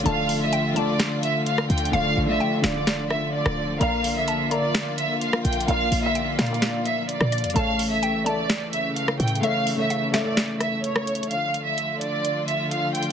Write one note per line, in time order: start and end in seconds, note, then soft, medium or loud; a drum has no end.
0.00 0.03 D3 loud
0.00 7.52 D3 medium
0.00 0.52 D3 medium
0.00 7.52 F3 medium
0.00 0.05 A3 loud
0.00 3.77 A3 medium
0.00 0.06 F4 medium
0.00 3.77 F4 medium
0.00 0.08 D5 loud
0.05 1.42 D1 loud
0.05 0.53 A3 medium
0.05 0.54 F4 medium
0.05 0.55 D5 loud
0.05 0.39 F5 loud
0.05 0.50 A5 loud
0.05 closed hi-hat medium
0.29 open hi-hat medium
0.41 0.74 E5 medium
0.53 0.75 G5 medium
0.53 closed hi-hat medium
0.74 1.39 D3 medium
0.74 1.40 A3 medium
0.74 1.40 F4 medium
0.74 1.20 D5 loud
0.74 1.89 A5 medium
0.74 closed hi-hat medium
0.78 1.41 D5 medium
0.99 snare loud
0.99 closed hi-hat medium
1.23 1.44 E5 medium
1.23 closed hi-hat medium
1.46 1.67 F5 medium
1.46 closed hi-hat medium
1.58 cross-stick medium
1.70 1.92 D2 loud
1.70 1.90 G5 medium
1.70 closed hi-hat medium
1.78 closed hi-hat medium
1.85 closed hi-hat medium
1.91 2.16 D1 loud
1.91 2.16 D3 loud
1.91 2.17 A3 medium
1.91 2.18 F4 medium
1.91 2.26 F5 loud
1.91 2.37 F5 loud
1.96 2.18 D5 loud
2.17 2.39 A1 loud
2.26 2.51 D3 medium
2.26 2.52 A3 medium
2.26 2.53 F4 medium
2.26 2.62 E5 medium
2.31 2.54 D5 medium
2.40 2.63 G5 medium
2.62 3.42 D1 loud
2.62 2.71 D3 medium
2.62 2.71 A3 medium
2.62 2.72 F4 medium
2.62 3.08 D5 medium
2.62 3.77 F5 medium
2.62 snare loud
2.66 2.73 D5 medium
2.73 3.38 D3 medium
2.73 3.39 A3 medium
2.73 3.40 F4 medium
2.78 3.40 D5 medium
2.87 snare loud
3.10 3.30 E5 medium
3.10 cross-stick medium
3.33 3.78 D5 medium
3.46 3.79 D1 loud
3.46 cross-stick loud
3.78 5.17 A#1 loud
3.78 4.27 A#3 loud
3.78 7.52 A#3 medium
3.78 7.52 F4 medium
3.78 4.28 A#4 medium
3.78 4.29 D5 medium
3.78 4.14 F5 medium
3.78 4.25 A#5 medium
3.78 closed hi-hat medium
3.83 4.30 F5 loud
4.04 open hi-hat medium
4.16 4.49 E5 medium
4.28 4.50 A5 medium
4.28 closed hi-hat medium
4.49 5.14 A#3 medium
4.49 5.15 A#4 medium
4.49 4.96 D5 loud
4.49 5.16 D5 medium
4.49 5.64 A#5 medium
4.49 closed hi-hat medium
4.54 5.16 E5 medium
4.75 snare loud
4.75 closed hi-hat medium
4.98 5.18 E5 medium
4.98 closed hi-hat medium
5.21 5.42 F5 medium
5.21 closed hi-hat medium
5.33 cross-stick loud
5.45 5.67 A#1 loud
5.45 5.65 G5 medium
5.45 closed hi-hat medium
5.53 closed hi-hat medium
5.61 closed hi-hat medium
5.66 5.91 A#1 loud
5.66 5.91 A#3 loud
5.66 5.92 A#4 medium
5.66 5.93 D5 medium
5.66 6.01 F5 loud
5.66 6.12 F5 loud
5.66 closed hi-hat medium
5.71 5.93 F5 loud
5.92 6.37 A#1 loud
5.92 open hi-hat medium
6.02 6.26 A#3 medium
6.02 6.27 A#4 medium
6.02 6.28 D5 medium
6.02 6.37 E5 medium
6.06 6.29 F5 medium
6.15 6.37 G5 medium
6.15 closed hi-hat medium
6.37 7.17 A#2 loud
6.37 6.46 A#3 medium
6.37 6.46 A#4 medium
6.37 6.83 D5 medium
6.37 6.47 D5 medium
6.37 7.28 F5 medium
6.37 snare loud
6.37 closed hi-hat medium
6.41 6.48 F5 medium
6.46 7.13 A#3 medium
6.46 7.14 A#4 medium
6.46 closed hi-hat medium
6.51 7.15 D5 medium
6.51 7.15 F5 medium
6.51 closed hi-hat soft
6.62 snare loud
6.62 closed hi-hat medium
6.85 7.06 E5 medium
6.85 closed hi-hat medium
7.09 7.53 D5 medium
7.09 closed hi-hat medium
7.21 7.46 A#2 loud
7.21 cross-stick loud
7.32 7.55 D5 medium
7.32 closed hi-hat medium
7.38 closed hi-hat medium
7.44 7.55 F2 loud
7.44 closed hi-hat medium
7.50 8.03 A3 loud
7.50 closed hi-hat medium
7.55 8.92 A1 loud
7.55 11.27 C#3 medium
7.55 11.27 E3 medium
7.55 11.27 A3 medium
7.55 8.03 A4 loud
7.55 8.04 C#5 medium
7.55 7.89 F5 loud
7.55 8.00 A5 loud
7.55 closed hi-hat medium
7.79 open hi-hat medium
7.91 8.24 E5 medium
8.03 8.25 G5 medium
8.03 closed hi-hat medium
8.24 8.89 A3 medium
8.24 8.90 A4 medium
8.24 8.70 D5 medium
8.24 9.39 A5 medium
8.24 closed hi-hat medium
8.29 8.91 E5 medium
8.50 snare loud
8.50 closed hi-hat medium
8.73 8.93 E5 medium
8.73 closed hi-hat medium
8.96 9.16 F5 medium
8.96 closed hi-hat medium
9.08 cross-stick loud
9.20 9.42 A2 loud
9.20 9.40 G5 medium
9.20 closed hi-hat medium
9.28 closed hi-hat medium
9.36 closed hi-hat medium
9.41 9.66 A3 loud
9.41 9.67 A4 medium
9.41 9.68 C#5 medium
9.41 9.87 E5 loud
9.41 9.76 F5 loud
9.41 closed hi-hat medium
9.45 9.68 E5 loud
9.67 open hi-hat medium
9.76 10.01 A3 medium
9.76 10.02 A4 medium
9.76 10.03 C#5 medium
9.76 10.12 E5 medium
9.80 10.03 E5 medium
9.90 10.13 F5 medium
9.90 closed hi-hat medium
10.11 10.20 A3 medium
10.11 10.21 A4 medium
10.11 10.22 C#5 medium
10.11 10.58 D5 medium
10.11 11.27 E5 medium
10.11 snare medium
10.11 closed hi-hat medium
10.16 10.23 E5 medium
10.23 10.88 A3 medium
10.23 10.89 A4 medium
10.28 10.90 E5 medium
10.37 snare loud
10.37 closed hi-hat medium
10.60 10.81 E5 medium
10.60 cross-stick medium
10.60 closed hi-hat medium
10.84 11.28 C#5 medium
10.84 closed hi-hat medium
10.96 cross-stick loud
11.07 closed hi-hat medium
11.15 closed hi-hat medium
11.23 closed hi-hat medium
11.30 13.12 D3 medium
11.30 13.12 F3 medium
11.30 13.12 A3 medium
11.30 13.12 F4 medium
11.30 11.64 F5 medium
11.30 closed hi-hat medium
11.54 closed hi-hat medium
11.66 11.99 E5 medium
11.78 closed hi-hat medium
12.01 12.45 D5 medium
12.01 closed hi-hat medium
12.25 closed hi-hat medium
12.48 12.68 E5 medium
12.48 closed hi-hat medium
12.71 12.92 F5 medium
12.71 closed hi-hat medium
12.95 13.12 G5 medium
12.95 closed hi-hat medium
13.03 closed hi-hat medium